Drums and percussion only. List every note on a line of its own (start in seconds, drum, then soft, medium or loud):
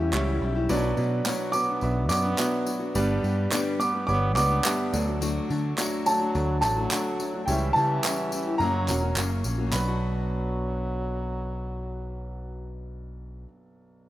0.13 clap medium
0.69 tambourine medium
0.97 tambourine soft
1.25 clap loud
1.25 tambourine medium
1.53 tambourine medium
1.81 tambourine soft
2.09 clap medium
2.09 tambourine medium
2.38 clap medium
2.38 tambourine loud
2.66 tambourine medium
2.95 tambourine medium
3.24 tambourine soft
3.52 clap loud
3.52 tambourine loud
3.80 tambourine medium
4.09 tambourine soft
4.36 clap medium
4.36 tambourine medium
4.64 clap loud
4.64 tambourine loud
4.94 tambourine medium
5.22 tambourine medium
5.50 tambourine soft
5.78 clap medium
5.78 tambourine loud
6.06 tambourine medium
6.35 tambourine soft
6.63 clap medium
6.63 tambourine medium
6.91 clap medium
6.91 tambourine medium
7.20 tambourine medium
7.48 tambourine medium
7.76 tambourine soft
8.04 clap loud
8.04 tambourine loud
8.32 tambourine medium
8.60 tambourine soft
8.88 clap medium
8.88 tambourine medium
9.16 clap medium
9.16 tambourine loud
9.44 tambourine medium
9.72 clap loud
9.72 tambourine medium